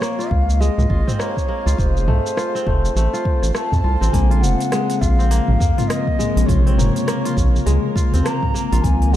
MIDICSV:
0, 0, Header, 1, 7, 480
1, 0, Start_track
1, 0, Key_signature, -5, "minor"
1, 0, Tempo, 588235
1, 1453, Time_signature, 4, 2, 24, 8
1, 7478, End_track
2, 0, Start_track
2, 0, Title_t, "Bansuri"
2, 0, Program_c, 0, 73
2, 0, Note_on_c, 0, 73, 99
2, 250, Note_on_c, 0, 77, 105
2, 262, Note_off_c, 0, 73, 0
2, 493, Note_on_c, 0, 75, 99
2, 505, Note_off_c, 0, 77, 0
2, 977, Note_on_c, 0, 73, 95
2, 989, Note_off_c, 0, 75, 0
2, 1456, Note_on_c, 0, 72, 91
2, 1468, Note_off_c, 0, 73, 0
2, 2888, Note_off_c, 0, 72, 0
2, 2892, Note_on_c, 0, 81, 103
2, 3366, Note_on_c, 0, 80, 102
2, 3378, Note_off_c, 0, 81, 0
2, 3603, Note_on_c, 0, 78, 108
2, 3615, Note_off_c, 0, 80, 0
2, 4083, Note_on_c, 0, 77, 105
2, 4095, Note_off_c, 0, 78, 0
2, 4796, Note_on_c, 0, 75, 97
2, 4808, Note_off_c, 0, 77, 0
2, 5272, Note_on_c, 0, 73, 86
2, 5284, Note_off_c, 0, 75, 0
2, 6506, Note_off_c, 0, 73, 0
2, 6727, Note_on_c, 0, 82, 107
2, 7203, Note_on_c, 0, 80, 112
2, 7215, Note_off_c, 0, 82, 0
2, 7447, Note_on_c, 0, 78, 103
2, 7460, Note_off_c, 0, 80, 0
2, 7478, Note_off_c, 0, 78, 0
2, 7478, End_track
3, 0, Start_track
3, 0, Title_t, "Ambient pad"
3, 0, Program_c, 1, 92
3, 0, Note_on_c, 1, 68, 66
3, 0, Note_on_c, 1, 75, 71
3, 0, Note_on_c, 1, 77, 82
3, 1429, Note_off_c, 1, 75, 0
3, 1430, Note_off_c, 1, 68, 0
3, 1430, Note_off_c, 1, 77, 0
3, 1455, Note_on_c, 1, 65, 76
3, 1455, Note_on_c, 1, 72, 85
3, 1457, Note_on_c, 1, 69, 76
3, 3355, Note_off_c, 1, 65, 0
3, 3355, Note_off_c, 1, 72, 0
3, 3356, Note_off_c, 1, 69, 0
3, 3374, Note_on_c, 1, 53, 71
3, 3376, Note_on_c, 1, 58, 80
3, 3377, Note_on_c, 1, 70, 74
3, 7181, Note_off_c, 1, 53, 0
3, 7182, Note_off_c, 1, 58, 0
3, 7182, Note_off_c, 1, 70, 0
3, 7213, Note_on_c, 1, 68, 72
3, 7213, Note_on_c, 1, 80, 88
3, 7217, Note_on_c, 1, 75, 69
3, 7478, Note_off_c, 1, 68, 0
3, 7478, Note_off_c, 1, 75, 0
3, 7478, Note_off_c, 1, 80, 0
3, 7478, End_track
4, 0, Start_track
4, 0, Title_t, "Kora"
4, 0, Program_c, 2, 46
4, 0, Note_on_c, 2, 60, 73
4, 0, Note_on_c, 2, 65, 75
4, 8, Note_on_c, 2, 58, 78
4, 149, Note_off_c, 2, 65, 0
4, 153, Note_on_c, 2, 65, 72
4, 494, Note_on_c, 2, 56, 80
4, 730, Note_off_c, 2, 65, 0
4, 733, Note_on_c, 2, 65, 72
4, 873, Note_off_c, 2, 60, 0
4, 876, Note_on_c, 2, 60, 71
4, 969, Note_off_c, 2, 58, 0
4, 972, Note_on_c, 2, 58, 78
4, 1208, Note_off_c, 2, 58, 0
4, 1212, Note_on_c, 2, 58, 78
4, 1353, Note_off_c, 2, 65, 0
4, 1357, Note_on_c, 2, 65, 76
4, 1494, Note_off_c, 2, 56, 0
4, 1695, Note_on_c, 2, 57, 67
4, 1744, Note_off_c, 2, 58, 0
4, 1931, Note_off_c, 2, 65, 0
4, 1934, Note_on_c, 2, 65, 80
4, 2077, Note_off_c, 2, 60, 0
4, 2080, Note_on_c, 2, 60, 76
4, 2173, Note_off_c, 2, 57, 0
4, 2177, Note_on_c, 2, 57, 78
4, 2415, Note_off_c, 2, 57, 0
4, 2418, Note_on_c, 2, 57, 82
4, 2555, Note_off_c, 2, 65, 0
4, 2558, Note_on_c, 2, 65, 77
4, 2892, Note_off_c, 2, 57, 0
4, 2895, Note_on_c, 2, 57, 81
4, 3130, Note_off_c, 2, 65, 0
4, 3133, Note_on_c, 2, 65, 75
4, 3270, Note_off_c, 2, 60, 0
4, 3273, Note_on_c, 2, 60, 75
4, 3373, Note_on_c, 2, 58, 74
4, 3422, Note_off_c, 2, 57, 0
4, 3512, Note_off_c, 2, 65, 0
4, 3515, Note_on_c, 2, 65, 71
4, 3854, Note_on_c, 2, 56, 77
4, 4087, Note_off_c, 2, 65, 0
4, 4090, Note_on_c, 2, 65, 74
4, 4230, Note_off_c, 2, 60, 0
4, 4233, Note_on_c, 2, 60, 75
4, 4328, Note_off_c, 2, 58, 0
4, 4331, Note_on_c, 2, 58, 83
4, 4570, Note_off_c, 2, 58, 0
4, 4574, Note_on_c, 2, 58, 69
4, 4712, Note_off_c, 2, 65, 0
4, 4715, Note_on_c, 2, 65, 73
4, 5041, Note_off_c, 2, 56, 0
4, 5050, Note_on_c, 2, 56, 74
4, 5287, Note_off_c, 2, 65, 0
4, 5291, Note_on_c, 2, 65, 77
4, 5434, Note_off_c, 2, 60, 0
4, 5438, Note_on_c, 2, 60, 78
4, 5530, Note_off_c, 2, 58, 0
4, 5533, Note_on_c, 2, 58, 64
4, 5768, Note_off_c, 2, 58, 0
4, 5771, Note_on_c, 2, 58, 81
4, 5914, Note_off_c, 2, 65, 0
4, 5917, Note_on_c, 2, 65, 76
4, 6241, Note_off_c, 2, 56, 0
4, 6251, Note_on_c, 2, 56, 81
4, 6492, Note_off_c, 2, 65, 0
4, 6495, Note_on_c, 2, 65, 74
4, 6634, Note_off_c, 2, 60, 0
4, 6638, Note_on_c, 2, 60, 71
4, 6730, Note_off_c, 2, 58, 0
4, 6733, Note_on_c, 2, 58, 76
4, 6967, Note_off_c, 2, 58, 0
4, 6971, Note_on_c, 2, 58, 79
4, 7114, Note_off_c, 2, 65, 0
4, 7117, Note_on_c, 2, 65, 76
4, 7254, Note_off_c, 2, 56, 0
4, 7478, Note_off_c, 2, 58, 0
4, 7478, Note_off_c, 2, 60, 0
4, 7478, Note_off_c, 2, 65, 0
4, 7478, End_track
5, 0, Start_track
5, 0, Title_t, "Synth keys"
5, 0, Program_c, 3, 88
5, 3359, Note_on_c, 3, 49, 97
5, 3376, Note_on_c, 3, 56, 95
5, 3390, Note_on_c, 3, 60, 102
5, 3534, Control_c, 3, 64, 127
5, 4675, Note_off_c, 3, 49, 0
5, 4684, Note_off_c, 3, 56, 0
5, 4691, Note_off_c, 3, 60, 0
5, 4701, Note_on_c, 3, 49, 87
5, 4720, Note_on_c, 3, 56, 83
5, 4736, Note_on_c, 3, 60, 96
5, 5262, Note_off_c, 3, 49, 0
5, 5272, Note_off_c, 3, 56, 0
5, 5272, Note_on_c, 3, 49, 101
5, 5280, Note_off_c, 3, 60, 0
5, 5290, Note_on_c, 3, 56, 91
5, 5306, Note_on_c, 3, 48, 106
5, 6592, Note_off_c, 3, 49, 0
5, 6601, Note_off_c, 3, 56, 0
5, 6609, Note_off_c, 3, 48, 0
5, 6621, Note_on_c, 3, 49, 90
5, 6637, Note_on_c, 3, 56, 81
5, 6657, Note_on_c, 3, 60, 103
5, 7182, Note_off_c, 3, 49, 0
5, 7190, Note_off_c, 3, 56, 0
5, 7195, Note_on_c, 3, 51, 98
5, 7200, Note_off_c, 3, 60, 0
5, 7214, Note_on_c, 3, 53, 94
5, 7223, Control_c, 3, 64, 0
5, 7229, Note_on_c, 3, 60, 106
5, 7351, Control_c, 3, 64, 127
5, 7478, Note_off_c, 3, 51, 0
5, 7478, Note_off_c, 3, 53, 0
5, 7478, Note_off_c, 3, 60, 0
5, 7478, End_track
6, 0, Start_track
6, 0, Title_t, "Analog synth bass"
6, 0, Program_c, 4, 38
6, 254, Note_on_c, 4, 37, 91
6, 569, Note_off_c, 4, 37, 0
6, 637, Note_on_c, 4, 37, 99
6, 705, Note_off_c, 4, 37, 0
6, 735, Note_on_c, 4, 32, 90
6, 836, Note_off_c, 4, 32, 0
6, 1356, Note_on_c, 4, 37, 94
6, 1424, Note_off_c, 4, 37, 0
6, 1456, Note_on_c, 4, 29, 92
6, 1693, Note_on_c, 4, 36, 101
6, 1705, Note_off_c, 4, 29, 0
6, 1794, Note_off_c, 4, 36, 0
6, 2178, Note_on_c, 4, 29, 96
6, 2359, Note_off_c, 4, 29, 0
6, 2411, Note_on_c, 4, 33, 76
6, 2513, Note_off_c, 4, 33, 0
6, 2798, Note_on_c, 4, 33, 91
6, 2865, Note_off_c, 4, 33, 0
6, 3037, Note_on_c, 4, 41, 94
6, 3105, Note_off_c, 4, 41, 0
6, 3133, Note_on_c, 4, 36, 81
6, 3234, Note_off_c, 4, 36, 0
6, 3273, Note_on_c, 4, 33, 86
6, 3343, Note_off_c, 4, 33, 0
6, 3374, Note_on_c, 4, 34, 93
6, 3612, Note_on_c, 4, 29, 104
6, 3624, Note_off_c, 4, 34, 0
6, 3714, Note_off_c, 4, 29, 0
6, 4092, Note_on_c, 4, 34, 95
6, 4409, Note_off_c, 4, 34, 0
6, 4476, Note_on_c, 4, 34, 101
6, 4544, Note_off_c, 4, 34, 0
6, 4573, Note_on_c, 4, 41, 88
6, 4674, Note_off_c, 4, 41, 0
6, 5191, Note_on_c, 4, 34, 98
6, 5262, Note_off_c, 4, 34, 0
6, 5294, Note_on_c, 4, 34, 90
6, 5528, Note_on_c, 4, 29, 104
6, 5540, Note_off_c, 4, 34, 0
6, 5632, Note_off_c, 4, 29, 0
6, 6013, Note_on_c, 4, 34, 94
6, 6196, Note_off_c, 4, 34, 0
6, 6254, Note_on_c, 4, 37, 79
6, 6355, Note_off_c, 4, 37, 0
6, 6638, Note_on_c, 4, 39, 106
6, 6705, Note_off_c, 4, 39, 0
6, 7117, Note_on_c, 4, 34, 93
6, 7185, Note_off_c, 4, 34, 0
6, 7213, Note_on_c, 4, 37, 90
6, 7453, Note_on_c, 4, 32, 107
6, 7465, Note_off_c, 4, 37, 0
6, 7478, Note_off_c, 4, 32, 0
6, 7478, End_track
7, 0, Start_track
7, 0, Title_t, "Drums"
7, 16, Note_on_c, 9, 37, 91
7, 23, Note_on_c, 9, 82, 50
7, 97, Note_off_c, 9, 37, 0
7, 105, Note_off_c, 9, 82, 0
7, 167, Note_on_c, 9, 82, 33
7, 249, Note_off_c, 9, 82, 0
7, 253, Note_on_c, 9, 36, 88
7, 334, Note_off_c, 9, 36, 0
7, 406, Note_on_c, 9, 82, 57
7, 488, Note_off_c, 9, 82, 0
7, 506, Note_on_c, 9, 82, 53
7, 587, Note_off_c, 9, 82, 0
7, 640, Note_on_c, 9, 45, 62
7, 648, Note_on_c, 9, 82, 30
7, 722, Note_off_c, 9, 45, 0
7, 729, Note_off_c, 9, 82, 0
7, 734, Note_on_c, 9, 36, 92
7, 815, Note_off_c, 9, 36, 0
7, 881, Note_on_c, 9, 45, 80
7, 888, Note_on_c, 9, 82, 58
7, 962, Note_off_c, 9, 45, 0
7, 970, Note_off_c, 9, 82, 0
7, 976, Note_on_c, 9, 37, 91
7, 984, Note_on_c, 9, 82, 49
7, 1058, Note_off_c, 9, 37, 0
7, 1065, Note_off_c, 9, 82, 0
7, 1118, Note_on_c, 9, 36, 53
7, 1128, Note_on_c, 9, 82, 33
7, 1200, Note_off_c, 9, 36, 0
7, 1209, Note_off_c, 9, 82, 0
7, 1368, Note_on_c, 9, 82, 69
7, 1450, Note_off_c, 9, 82, 0
7, 1457, Note_on_c, 9, 36, 109
7, 1464, Note_on_c, 9, 82, 52
7, 1538, Note_off_c, 9, 36, 0
7, 1545, Note_off_c, 9, 82, 0
7, 1608, Note_on_c, 9, 82, 32
7, 1690, Note_off_c, 9, 82, 0
7, 1696, Note_on_c, 9, 45, 81
7, 1778, Note_off_c, 9, 45, 0
7, 1848, Note_on_c, 9, 82, 59
7, 1930, Note_off_c, 9, 82, 0
7, 1937, Note_on_c, 9, 37, 93
7, 1945, Note_on_c, 9, 82, 50
7, 2019, Note_off_c, 9, 37, 0
7, 2026, Note_off_c, 9, 82, 0
7, 2089, Note_on_c, 9, 82, 30
7, 2171, Note_off_c, 9, 82, 0
7, 2176, Note_on_c, 9, 36, 96
7, 2257, Note_off_c, 9, 36, 0
7, 2327, Note_on_c, 9, 82, 59
7, 2409, Note_off_c, 9, 82, 0
7, 2423, Note_on_c, 9, 82, 53
7, 2504, Note_off_c, 9, 82, 0
7, 2566, Note_on_c, 9, 82, 31
7, 2647, Note_off_c, 9, 82, 0
7, 2655, Note_on_c, 9, 36, 99
7, 2736, Note_off_c, 9, 36, 0
7, 2795, Note_on_c, 9, 37, 28
7, 2803, Note_on_c, 9, 82, 65
7, 2877, Note_off_c, 9, 37, 0
7, 2885, Note_off_c, 9, 82, 0
7, 2894, Note_on_c, 9, 37, 95
7, 2901, Note_on_c, 9, 82, 51
7, 2975, Note_off_c, 9, 37, 0
7, 2983, Note_off_c, 9, 82, 0
7, 3037, Note_on_c, 9, 36, 53
7, 3038, Note_on_c, 9, 45, 62
7, 3046, Note_on_c, 9, 82, 33
7, 3119, Note_off_c, 9, 36, 0
7, 3120, Note_off_c, 9, 45, 0
7, 3127, Note_off_c, 9, 82, 0
7, 3287, Note_on_c, 9, 82, 64
7, 3369, Note_off_c, 9, 82, 0
7, 3373, Note_on_c, 9, 36, 108
7, 3378, Note_on_c, 9, 46, 71
7, 3385, Note_on_c, 9, 82, 41
7, 3455, Note_off_c, 9, 36, 0
7, 3460, Note_off_c, 9, 46, 0
7, 3467, Note_off_c, 9, 82, 0
7, 3520, Note_on_c, 9, 46, 33
7, 3601, Note_off_c, 9, 46, 0
7, 3622, Note_on_c, 9, 82, 72
7, 3703, Note_off_c, 9, 82, 0
7, 3758, Note_on_c, 9, 46, 31
7, 3765, Note_on_c, 9, 82, 33
7, 3839, Note_off_c, 9, 46, 0
7, 3847, Note_off_c, 9, 82, 0
7, 3852, Note_on_c, 9, 37, 96
7, 3852, Note_on_c, 9, 46, 65
7, 3860, Note_on_c, 9, 82, 42
7, 3934, Note_off_c, 9, 37, 0
7, 3934, Note_off_c, 9, 46, 0
7, 3941, Note_off_c, 9, 82, 0
7, 3996, Note_on_c, 9, 46, 47
7, 4003, Note_on_c, 9, 82, 29
7, 4078, Note_off_c, 9, 46, 0
7, 4085, Note_off_c, 9, 82, 0
7, 4093, Note_on_c, 9, 36, 101
7, 4101, Note_on_c, 9, 82, 72
7, 4174, Note_off_c, 9, 36, 0
7, 4182, Note_off_c, 9, 82, 0
7, 4242, Note_on_c, 9, 82, 33
7, 4324, Note_off_c, 9, 82, 0
7, 4334, Note_on_c, 9, 46, 72
7, 4341, Note_on_c, 9, 82, 45
7, 4415, Note_off_c, 9, 46, 0
7, 4423, Note_off_c, 9, 82, 0
7, 4473, Note_on_c, 9, 45, 60
7, 4555, Note_off_c, 9, 45, 0
7, 4572, Note_on_c, 9, 36, 106
7, 4579, Note_on_c, 9, 82, 75
7, 4654, Note_off_c, 9, 36, 0
7, 4661, Note_off_c, 9, 82, 0
7, 4718, Note_on_c, 9, 45, 81
7, 4718, Note_on_c, 9, 46, 31
7, 4726, Note_on_c, 9, 82, 34
7, 4800, Note_off_c, 9, 45, 0
7, 4800, Note_off_c, 9, 46, 0
7, 4807, Note_off_c, 9, 82, 0
7, 4815, Note_on_c, 9, 37, 102
7, 4815, Note_on_c, 9, 46, 68
7, 4822, Note_on_c, 9, 82, 45
7, 4896, Note_off_c, 9, 37, 0
7, 4896, Note_off_c, 9, 46, 0
7, 4904, Note_off_c, 9, 82, 0
7, 4956, Note_on_c, 9, 36, 57
7, 5037, Note_off_c, 9, 36, 0
7, 5054, Note_on_c, 9, 45, 62
7, 5061, Note_on_c, 9, 82, 72
7, 5135, Note_off_c, 9, 45, 0
7, 5143, Note_off_c, 9, 82, 0
7, 5200, Note_on_c, 9, 46, 48
7, 5208, Note_on_c, 9, 82, 33
7, 5282, Note_off_c, 9, 46, 0
7, 5289, Note_off_c, 9, 82, 0
7, 5293, Note_on_c, 9, 36, 122
7, 5297, Note_on_c, 9, 46, 64
7, 5305, Note_on_c, 9, 82, 45
7, 5374, Note_off_c, 9, 36, 0
7, 5379, Note_off_c, 9, 46, 0
7, 5386, Note_off_c, 9, 82, 0
7, 5442, Note_on_c, 9, 46, 33
7, 5524, Note_off_c, 9, 46, 0
7, 5537, Note_on_c, 9, 45, 76
7, 5545, Note_on_c, 9, 82, 76
7, 5619, Note_off_c, 9, 45, 0
7, 5627, Note_off_c, 9, 82, 0
7, 5680, Note_on_c, 9, 46, 29
7, 5688, Note_on_c, 9, 82, 32
7, 5762, Note_off_c, 9, 46, 0
7, 5769, Note_off_c, 9, 82, 0
7, 5776, Note_on_c, 9, 37, 101
7, 5776, Note_on_c, 9, 46, 66
7, 5784, Note_on_c, 9, 82, 44
7, 5858, Note_off_c, 9, 37, 0
7, 5858, Note_off_c, 9, 46, 0
7, 5865, Note_off_c, 9, 82, 0
7, 5920, Note_on_c, 9, 46, 48
7, 5928, Note_on_c, 9, 82, 32
7, 6002, Note_off_c, 9, 46, 0
7, 6009, Note_off_c, 9, 82, 0
7, 6012, Note_on_c, 9, 36, 100
7, 6021, Note_on_c, 9, 82, 77
7, 6094, Note_off_c, 9, 36, 0
7, 6102, Note_off_c, 9, 82, 0
7, 6169, Note_on_c, 9, 82, 35
7, 6250, Note_off_c, 9, 82, 0
7, 6256, Note_on_c, 9, 46, 65
7, 6263, Note_on_c, 9, 82, 45
7, 6337, Note_off_c, 9, 46, 0
7, 6345, Note_off_c, 9, 82, 0
7, 6493, Note_on_c, 9, 36, 108
7, 6505, Note_on_c, 9, 82, 82
7, 6574, Note_off_c, 9, 36, 0
7, 6586, Note_off_c, 9, 82, 0
7, 6639, Note_on_c, 9, 46, 32
7, 6647, Note_on_c, 9, 82, 35
7, 6721, Note_off_c, 9, 46, 0
7, 6728, Note_off_c, 9, 82, 0
7, 6737, Note_on_c, 9, 37, 105
7, 6737, Note_on_c, 9, 46, 66
7, 6745, Note_on_c, 9, 82, 43
7, 6819, Note_off_c, 9, 37, 0
7, 6819, Note_off_c, 9, 46, 0
7, 6827, Note_off_c, 9, 82, 0
7, 6876, Note_on_c, 9, 36, 61
7, 6880, Note_on_c, 9, 45, 60
7, 6958, Note_off_c, 9, 36, 0
7, 6962, Note_off_c, 9, 45, 0
7, 6983, Note_on_c, 9, 82, 75
7, 7064, Note_off_c, 9, 82, 0
7, 7120, Note_on_c, 9, 46, 46
7, 7128, Note_on_c, 9, 82, 39
7, 7202, Note_off_c, 9, 46, 0
7, 7209, Note_off_c, 9, 82, 0
7, 7212, Note_on_c, 9, 36, 116
7, 7216, Note_on_c, 9, 46, 65
7, 7223, Note_on_c, 9, 82, 43
7, 7294, Note_off_c, 9, 36, 0
7, 7297, Note_off_c, 9, 46, 0
7, 7305, Note_off_c, 9, 82, 0
7, 7360, Note_on_c, 9, 46, 33
7, 7441, Note_off_c, 9, 46, 0
7, 7478, End_track
0, 0, End_of_file